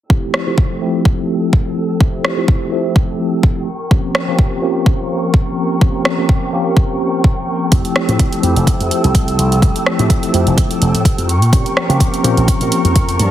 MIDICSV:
0, 0, Header, 1, 6, 480
1, 0, Start_track
1, 0, Key_signature, -1, "major"
1, 0, Tempo, 476190
1, 103, Time_signature, 4, 2, 24, 8
1, 13415, End_track
2, 0, Start_track
2, 0, Title_t, "Violin section"
2, 0, Program_c, 0, 48
2, 102, Note_on_c, 0, 79, 71
2, 102, Note_on_c, 0, 88, 85
2, 103, Note_on_c, 0, 69, 76
2, 3666, Note_off_c, 0, 88, 0
2, 3667, Note_off_c, 0, 69, 0
2, 3703, Note_on_c, 0, 70, 80
2, 3703, Note_on_c, 0, 85, 89
2, 7743, Note_off_c, 0, 70, 0
2, 7743, Note_off_c, 0, 85, 0
2, 7781, Note_on_c, 0, 69, 78
2, 7781, Note_on_c, 0, 88, 90
2, 11346, Note_off_c, 0, 69, 0
2, 11346, Note_off_c, 0, 88, 0
2, 11381, Note_on_c, 0, 70, 83
2, 11382, Note_on_c, 0, 85, 90
2, 13262, Note_off_c, 0, 79, 0
2, 13299, Note_on_c, 0, 81, 77
2, 13415, Note_off_c, 0, 70, 0
2, 13415, Note_off_c, 0, 81, 0
2, 13415, Note_off_c, 0, 85, 0
2, 13415, End_track
3, 0, Start_track
3, 0, Title_t, "Tine electric piano"
3, 0, Program_c, 1, 4
3, 96, Note_on_c, 1, 53, 69
3, 99, Note_on_c, 1, 57, 63
3, 101, Note_on_c, 1, 60, 65
3, 103, Note_on_c, 1, 64, 64
3, 104, Note_on_c, 1, 67, 75
3, 438, Note_off_c, 1, 53, 0
3, 440, Note_off_c, 1, 57, 0
3, 441, Note_off_c, 1, 60, 0
3, 442, Note_off_c, 1, 64, 0
3, 442, Note_off_c, 1, 67, 0
3, 468, Note_on_c, 1, 53, 81
3, 469, Note_on_c, 1, 57, 74
3, 473, Note_on_c, 1, 60, 73
3, 474, Note_on_c, 1, 64, 75
3, 476, Note_on_c, 1, 67, 89
3, 794, Note_off_c, 1, 53, 0
3, 794, Note_off_c, 1, 57, 0
3, 796, Note_off_c, 1, 60, 0
3, 797, Note_off_c, 1, 64, 0
3, 798, Note_off_c, 1, 67, 0
3, 816, Note_on_c, 1, 53, 79
3, 819, Note_on_c, 1, 57, 72
3, 824, Note_on_c, 1, 60, 78
3, 827, Note_on_c, 1, 64, 74
3, 832, Note_on_c, 1, 67, 89
3, 1993, Note_off_c, 1, 53, 0
3, 1994, Note_off_c, 1, 57, 0
3, 1997, Note_off_c, 1, 60, 0
3, 1999, Note_off_c, 1, 64, 0
3, 2001, Note_off_c, 1, 67, 0
3, 2018, Note_on_c, 1, 53, 72
3, 2018, Note_on_c, 1, 57, 67
3, 2021, Note_on_c, 1, 60, 64
3, 2023, Note_on_c, 1, 64, 66
3, 2025, Note_on_c, 1, 67, 80
3, 2359, Note_off_c, 1, 53, 0
3, 2360, Note_off_c, 1, 57, 0
3, 2361, Note_off_c, 1, 60, 0
3, 2362, Note_off_c, 1, 64, 0
3, 2363, Note_off_c, 1, 67, 0
3, 2387, Note_on_c, 1, 53, 80
3, 2388, Note_on_c, 1, 57, 73
3, 2391, Note_on_c, 1, 60, 72
3, 2393, Note_on_c, 1, 64, 77
3, 2395, Note_on_c, 1, 67, 92
3, 2713, Note_off_c, 1, 53, 0
3, 2714, Note_off_c, 1, 57, 0
3, 2715, Note_off_c, 1, 60, 0
3, 2716, Note_off_c, 1, 64, 0
3, 2717, Note_off_c, 1, 67, 0
3, 2734, Note_on_c, 1, 53, 84
3, 2738, Note_on_c, 1, 57, 73
3, 2743, Note_on_c, 1, 60, 73
3, 2746, Note_on_c, 1, 64, 71
3, 2751, Note_on_c, 1, 67, 88
3, 3685, Note_off_c, 1, 53, 0
3, 3687, Note_off_c, 1, 57, 0
3, 3690, Note_off_c, 1, 60, 0
3, 3691, Note_off_c, 1, 64, 0
3, 3694, Note_off_c, 1, 67, 0
3, 3939, Note_on_c, 1, 53, 75
3, 3939, Note_on_c, 1, 58, 63
3, 3943, Note_on_c, 1, 60, 66
3, 3944, Note_on_c, 1, 61, 67
3, 3946, Note_on_c, 1, 67, 81
3, 4280, Note_off_c, 1, 53, 0
3, 4280, Note_off_c, 1, 58, 0
3, 4282, Note_off_c, 1, 60, 0
3, 4282, Note_off_c, 1, 61, 0
3, 4284, Note_off_c, 1, 67, 0
3, 4310, Note_on_c, 1, 53, 82
3, 4311, Note_on_c, 1, 58, 75
3, 4313, Note_on_c, 1, 60, 74
3, 4316, Note_on_c, 1, 61, 74
3, 4319, Note_on_c, 1, 67, 90
3, 4635, Note_off_c, 1, 53, 0
3, 4635, Note_off_c, 1, 58, 0
3, 4636, Note_off_c, 1, 60, 0
3, 4638, Note_off_c, 1, 61, 0
3, 4639, Note_off_c, 1, 67, 0
3, 4655, Note_on_c, 1, 53, 82
3, 4659, Note_on_c, 1, 58, 77
3, 4664, Note_on_c, 1, 60, 74
3, 4667, Note_on_c, 1, 61, 72
3, 4671, Note_on_c, 1, 67, 92
3, 5832, Note_off_c, 1, 53, 0
3, 5835, Note_off_c, 1, 58, 0
3, 5837, Note_off_c, 1, 60, 0
3, 5839, Note_off_c, 1, 61, 0
3, 5841, Note_off_c, 1, 67, 0
3, 5859, Note_on_c, 1, 53, 71
3, 5862, Note_on_c, 1, 58, 67
3, 5864, Note_on_c, 1, 60, 68
3, 5864, Note_on_c, 1, 61, 67
3, 5867, Note_on_c, 1, 67, 83
3, 6200, Note_off_c, 1, 53, 0
3, 6201, Note_off_c, 1, 58, 0
3, 6202, Note_off_c, 1, 60, 0
3, 6203, Note_off_c, 1, 61, 0
3, 6204, Note_off_c, 1, 67, 0
3, 6230, Note_on_c, 1, 53, 81
3, 6232, Note_on_c, 1, 58, 72
3, 6232, Note_on_c, 1, 60, 72
3, 6235, Note_on_c, 1, 61, 74
3, 6237, Note_on_c, 1, 67, 89
3, 6555, Note_off_c, 1, 53, 0
3, 6556, Note_off_c, 1, 58, 0
3, 6556, Note_off_c, 1, 60, 0
3, 6557, Note_off_c, 1, 61, 0
3, 6558, Note_off_c, 1, 67, 0
3, 6577, Note_on_c, 1, 53, 84
3, 6581, Note_on_c, 1, 58, 73
3, 6585, Note_on_c, 1, 60, 74
3, 6590, Note_on_c, 1, 61, 75
3, 6594, Note_on_c, 1, 67, 89
3, 7753, Note_off_c, 1, 53, 0
3, 7755, Note_off_c, 1, 58, 0
3, 7757, Note_off_c, 1, 60, 0
3, 7760, Note_off_c, 1, 61, 0
3, 7762, Note_off_c, 1, 67, 0
3, 7775, Note_on_c, 1, 53, 72
3, 7777, Note_on_c, 1, 57, 69
3, 7779, Note_on_c, 1, 60, 68
3, 7781, Note_on_c, 1, 64, 69
3, 7784, Note_on_c, 1, 67, 82
3, 8118, Note_off_c, 1, 53, 0
3, 8119, Note_off_c, 1, 57, 0
3, 8120, Note_off_c, 1, 60, 0
3, 8121, Note_off_c, 1, 64, 0
3, 8122, Note_off_c, 1, 67, 0
3, 8145, Note_on_c, 1, 53, 77
3, 8148, Note_on_c, 1, 57, 72
3, 8149, Note_on_c, 1, 60, 77
3, 8152, Note_on_c, 1, 64, 75
3, 8153, Note_on_c, 1, 67, 90
3, 8472, Note_off_c, 1, 53, 0
3, 8474, Note_off_c, 1, 57, 0
3, 8474, Note_off_c, 1, 60, 0
3, 8476, Note_off_c, 1, 64, 0
3, 8476, Note_off_c, 1, 67, 0
3, 8492, Note_on_c, 1, 53, 82
3, 8494, Note_on_c, 1, 57, 77
3, 8500, Note_on_c, 1, 60, 75
3, 8502, Note_on_c, 1, 64, 75
3, 8507, Note_on_c, 1, 67, 92
3, 9671, Note_off_c, 1, 53, 0
3, 9672, Note_off_c, 1, 57, 0
3, 9675, Note_off_c, 1, 60, 0
3, 9676, Note_off_c, 1, 64, 0
3, 9678, Note_off_c, 1, 67, 0
3, 9697, Note_on_c, 1, 53, 70
3, 9701, Note_on_c, 1, 57, 71
3, 9702, Note_on_c, 1, 60, 67
3, 9704, Note_on_c, 1, 64, 66
3, 9706, Note_on_c, 1, 67, 81
3, 10039, Note_off_c, 1, 53, 0
3, 10041, Note_off_c, 1, 57, 0
3, 10041, Note_off_c, 1, 60, 0
3, 10043, Note_off_c, 1, 64, 0
3, 10043, Note_off_c, 1, 67, 0
3, 10068, Note_on_c, 1, 53, 85
3, 10070, Note_on_c, 1, 57, 73
3, 10073, Note_on_c, 1, 60, 76
3, 10073, Note_on_c, 1, 64, 79
3, 10076, Note_on_c, 1, 67, 89
3, 10394, Note_off_c, 1, 53, 0
3, 10395, Note_off_c, 1, 57, 0
3, 10396, Note_off_c, 1, 60, 0
3, 10396, Note_off_c, 1, 64, 0
3, 10398, Note_off_c, 1, 67, 0
3, 10413, Note_on_c, 1, 53, 83
3, 10417, Note_on_c, 1, 57, 75
3, 10421, Note_on_c, 1, 60, 78
3, 10425, Note_on_c, 1, 64, 74
3, 10430, Note_on_c, 1, 67, 91
3, 11365, Note_off_c, 1, 53, 0
3, 11366, Note_off_c, 1, 57, 0
3, 11369, Note_off_c, 1, 60, 0
3, 11371, Note_off_c, 1, 64, 0
3, 11373, Note_off_c, 1, 67, 0
3, 11615, Note_on_c, 1, 53, 77
3, 11616, Note_on_c, 1, 58, 66
3, 11618, Note_on_c, 1, 60, 67
3, 11621, Note_on_c, 1, 61, 69
3, 11623, Note_on_c, 1, 67, 79
3, 11958, Note_off_c, 1, 53, 0
3, 11958, Note_off_c, 1, 58, 0
3, 11959, Note_off_c, 1, 60, 0
3, 11961, Note_off_c, 1, 61, 0
3, 11962, Note_off_c, 1, 67, 0
3, 11983, Note_on_c, 1, 53, 83
3, 11985, Note_on_c, 1, 58, 78
3, 11988, Note_on_c, 1, 60, 76
3, 11990, Note_on_c, 1, 61, 77
3, 11991, Note_on_c, 1, 67, 94
3, 12311, Note_off_c, 1, 53, 0
3, 12312, Note_off_c, 1, 58, 0
3, 12314, Note_off_c, 1, 60, 0
3, 12315, Note_off_c, 1, 61, 0
3, 12315, Note_off_c, 1, 67, 0
3, 12327, Note_on_c, 1, 53, 86
3, 12332, Note_on_c, 1, 58, 78
3, 12337, Note_on_c, 1, 60, 75
3, 12340, Note_on_c, 1, 61, 77
3, 12344, Note_on_c, 1, 67, 95
3, 13415, Note_off_c, 1, 53, 0
3, 13415, Note_off_c, 1, 58, 0
3, 13415, Note_off_c, 1, 60, 0
3, 13415, Note_off_c, 1, 61, 0
3, 13415, Note_off_c, 1, 67, 0
3, 13415, End_track
4, 0, Start_track
4, 0, Title_t, "Slap bass"
4, 0, Program_c, 2, 36
4, 7781, Note_on_c, 2, 41, 93
4, 7887, Note_off_c, 2, 41, 0
4, 8150, Note_on_c, 2, 45, 75
4, 8240, Note_off_c, 2, 45, 0
4, 8498, Note_on_c, 2, 41, 78
4, 8606, Note_off_c, 2, 41, 0
4, 8629, Note_on_c, 2, 29, 75
4, 8719, Note_off_c, 2, 29, 0
4, 8872, Note_on_c, 2, 41, 98
4, 8961, Note_off_c, 2, 41, 0
4, 9113, Note_on_c, 2, 36, 85
4, 9429, Note_off_c, 2, 36, 0
4, 9460, Note_on_c, 2, 36, 101
4, 9792, Note_off_c, 2, 36, 0
4, 10071, Note_on_c, 2, 45, 78
4, 10160, Note_off_c, 2, 45, 0
4, 10420, Note_on_c, 2, 41, 77
4, 10527, Note_off_c, 2, 41, 0
4, 10553, Note_on_c, 2, 29, 76
4, 10641, Note_off_c, 2, 29, 0
4, 10902, Note_on_c, 2, 29, 84
4, 11007, Note_off_c, 2, 29, 0
4, 11032, Note_on_c, 2, 45, 97
4, 11121, Note_off_c, 2, 45, 0
4, 11271, Note_on_c, 2, 41, 80
4, 11510, Note_off_c, 2, 41, 0
4, 11510, Note_on_c, 2, 46, 80
4, 11600, Note_off_c, 2, 46, 0
4, 11619, Note_on_c, 2, 46, 92
4, 11726, Note_off_c, 2, 46, 0
4, 11988, Note_on_c, 2, 49, 79
4, 12079, Note_off_c, 2, 49, 0
4, 12338, Note_on_c, 2, 46, 81
4, 12445, Note_off_c, 2, 46, 0
4, 12470, Note_on_c, 2, 34, 74
4, 12560, Note_off_c, 2, 34, 0
4, 12710, Note_on_c, 2, 46, 98
4, 12800, Note_off_c, 2, 46, 0
4, 12948, Note_on_c, 2, 41, 84
4, 13266, Note_off_c, 2, 41, 0
4, 13299, Note_on_c, 2, 43, 104
4, 13415, Note_off_c, 2, 43, 0
4, 13415, End_track
5, 0, Start_track
5, 0, Title_t, "Muted slap bass strokes"
5, 8741, Note_on_c, 9, 29, 41
5, 8842, Note_off_c, 9, 29, 0
5, 10792, Note_on_c, 9, 29, 41
5, 10893, Note_off_c, 9, 29, 0
5, 12579, Note_on_c, 9, 29, 42
5, 12679, Note_off_c, 9, 29, 0
5, 13415, End_track
6, 0, Start_track
6, 0, Title_t, "Drums"
6, 101, Note_on_c, 9, 36, 109
6, 202, Note_off_c, 9, 36, 0
6, 341, Note_on_c, 9, 37, 60
6, 442, Note_off_c, 9, 37, 0
6, 581, Note_on_c, 9, 36, 102
6, 682, Note_off_c, 9, 36, 0
6, 1062, Note_on_c, 9, 36, 106
6, 1162, Note_off_c, 9, 36, 0
6, 1542, Note_on_c, 9, 36, 105
6, 1642, Note_off_c, 9, 36, 0
6, 2021, Note_on_c, 9, 36, 115
6, 2122, Note_off_c, 9, 36, 0
6, 2263, Note_on_c, 9, 37, 57
6, 2364, Note_off_c, 9, 37, 0
6, 2501, Note_on_c, 9, 36, 107
6, 2602, Note_off_c, 9, 36, 0
6, 2981, Note_on_c, 9, 36, 113
6, 3082, Note_off_c, 9, 36, 0
6, 3461, Note_on_c, 9, 36, 106
6, 3562, Note_off_c, 9, 36, 0
6, 3941, Note_on_c, 9, 36, 114
6, 4042, Note_off_c, 9, 36, 0
6, 4182, Note_on_c, 9, 37, 65
6, 4282, Note_off_c, 9, 37, 0
6, 4421, Note_on_c, 9, 36, 104
6, 4522, Note_off_c, 9, 36, 0
6, 4901, Note_on_c, 9, 36, 113
6, 5001, Note_off_c, 9, 36, 0
6, 5380, Note_on_c, 9, 36, 109
6, 5481, Note_off_c, 9, 36, 0
6, 5860, Note_on_c, 9, 36, 109
6, 5961, Note_off_c, 9, 36, 0
6, 6100, Note_on_c, 9, 37, 64
6, 6201, Note_off_c, 9, 37, 0
6, 6341, Note_on_c, 9, 36, 106
6, 6441, Note_off_c, 9, 36, 0
6, 6820, Note_on_c, 9, 36, 116
6, 6921, Note_off_c, 9, 36, 0
6, 7300, Note_on_c, 9, 36, 107
6, 7401, Note_off_c, 9, 36, 0
6, 7779, Note_on_c, 9, 42, 80
6, 7780, Note_on_c, 9, 36, 118
6, 7880, Note_off_c, 9, 42, 0
6, 7881, Note_off_c, 9, 36, 0
6, 7911, Note_on_c, 9, 42, 36
6, 8012, Note_off_c, 9, 42, 0
6, 8020, Note_on_c, 9, 37, 66
6, 8121, Note_off_c, 9, 37, 0
6, 8152, Note_on_c, 9, 42, 36
6, 8253, Note_off_c, 9, 42, 0
6, 8260, Note_on_c, 9, 36, 108
6, 8260, Note_on_c, 9, 42, 82
6, 8361, Note_off_c, 9, 36, 0
6, 8361, Note_off_c, 9, 42, 0
6, 8392, Note_on_c, 9, 42, 36
6, 8493, Note_off_c, 9, 42, 0
6, 8501, Note_on_c, 9, 42, 60
6, 8602, Note_off_c, 9, 42, 0
6, 8633, Note_on_c, 9, 42, 36
6, 8734, Note_off_c, 9, 42, 0
6, 8740, Note_on_c, 9, 36, 108
6, 8744, Note_on_c, 9, 42, 83
6, 8841, Note_off_c, 9, 36, 0
6, 8845, Note_off_c, 9, 42, 0
6, 8876, Note_on_c, 9, 42, 37
6, 8976, Note_off_c, 9, 42, 0
6, 8984, Note_on_c, 9, 42, 57
6, 9085, Note_off_c, 9, 42, 0
6, 9115, Note_on_c, 9, 42, 36
6, 9216, Note_off_c, 9, 42, 0
6, 9220, Note_on_c, 9, 36, 107
6, 9222, Note_on_c, 9, 42, 85
6, 9321, Note_off_c, 9, 36, 0
6, 9323, Note_off_c, 9, 42, 0
6, 9354, Note_on_c, 9, 42, 33
6, 9455, Note_off_c, 9, 42, 0
6, 9464, Note_on_c, 9, 42, 60
6, 9565, Note_off_c, 9, 42, 0
6, 9597, Note_on_c, 9, 42, 36
6, 9698, Note_off_c, 9, 42, 0
6, 9700, Note_on_c, 9, 36, 113
6, 9706, Note_on_c, 9, 42, 76
6, 9801, Note_off_c, 9, 36, 0
6, 9806, Note_off_c, 9, 42, 0
6, 9835, Note_on_c, 9, 42, 37
6, 9936, Note_off_c, 9, 42, 0
6, 9943, Note_on_c, 9, 37, 63
6, 10044, Note_off_c, 9, 37, 0
6, 10073, Note_on_c, 9, 42, 36
6, 10174, Note_off_c, 9, 42, 0
6, 10181, Note_on_c, 9, 36, 103
6, 10182, Note_on_c, 9, 42, 87
6, 10281, Note_off_c, 9, 36, 0
6, 10283, Note_off_c, 9, 42, 0
6, 10312, Note_on_c, 9, 42, 36
6, 10413, Note_off_c, 9, 42, 0
6, 10422, Note_on_c, 9, 42, 62
6, 10523, Note_off_c, 9, 42, 0
6, 10552, Note_on_c, 9, 42, 38
6, 10652, Note_off_c, 9, 42, 0
6, 10661, Note_on_c, 9, 36, 103
6, 10663, Note_on_c, 9, 42, 92
6, 10761, Note_off_c, 9, 36, 0
6, 10764, Note_off_c, 9, 42, 0
6, 10792, Note_on_c, 9, 42, 39
6, 10893, Note_off_c, 9, 42, 0
6, 10903, Note_on_c, 9, 42, 62
6, 11004, Note_off_c, 9, 42, 0
6, 11034, Note_on_c, 9, 42, 37
6, 11135, Note_off_c, 9, 42, 0
6, 11140, Note_on_c, 9, 36, 101
6, 11143, Note_on_c, 9, 42, 84
6, 11241, Note_off_c, 9, 36, 0
6, 11244, Note_off_c, 9, 42, 0
6, 11274, Note_on_c, 9, 42, 38
6, 11375, Note_off_c, 9, 42, 0
6, 11383, Note_on_c, 9, 42, 61
6, 11484, Note_off_c, 9, 42, 0
6, 11514, Note_on_c, 9, 42, 37
6, 11615, Note_off_c, 9, 42, 0
6, 11619, Note_on_c, 9, 36, 114
6, 11622, Note_on_c, 9, 42, 83
6, 11720, Note_off_c, 9, 36, 0
6, 11723, Note_off_c, 9, 42, 0
6, 11754, Note_on_c, 9, 42, 36
6, 11854, Note_off_c, 9, 42, 0
6, 11862, Note_on_c, 9, 37, 60
6, 11963, Note_off_c, 9, 37, 0
6, 11994, Note_on_c, 9, 42, 37
6, 12095, Note_off_c, 9, 42, 0
6, 12099, Note_on_c, 9, 36, 96
6, 12102, Note_on_c, 9, 42, 94
6, 12200, Note_off_c, 9, 36, 0
6, 12203, Note_off_c, 9, 42, 0
6, 12234, Note_on_c, 9, 42, 39
6, 12335, Note_off_c, 9, 42, 0
6, 12342, Note_on_c, 9, 42, 66
6, 12443, Note_off_c, 9, 42, 0
6, 12474, Note_on_c, 9, 42, 36
6, 12574, Note_off_c, 9, 42, 0
6, 12579, Note_on_c, 9, 36, 102
6, 12582, Note_on_c, 9, 42, 95
6, 12680, Note_off_c, 9, 36, 0
6, 12683, Note_off_c, 9, 42, 0
6, 12710, Note_on_c, 9, 42, 41
6, 12811, Note_off_c, 9, 42, 0
6, 12820, Note_on_c, 9, 42, 62
6, 12921, Note_off_c, 9, 42, 0
6, 12952, Note_on_c, 9, 42, 38
6, 13052, Note_off_c, 9, 42, 0
6, 13060, Note_on_c, 9, 36, 104
6, 13060, Note_on_c, 9, 42, 90
6, 13160, Note_off_c, 9, 36, 0
6, 13161, Note_off_c, 9, 42, 0
6, 13191, Note_on_c, 9, 42, 37
6, 13292, Note_off_c, 9, 42, 0
6, 13300, Note_on_c, 9, 42, 62
6, 13401, Note_off_c, 9, 42, 0
6, 13415, End_track
0, 0, End_of_file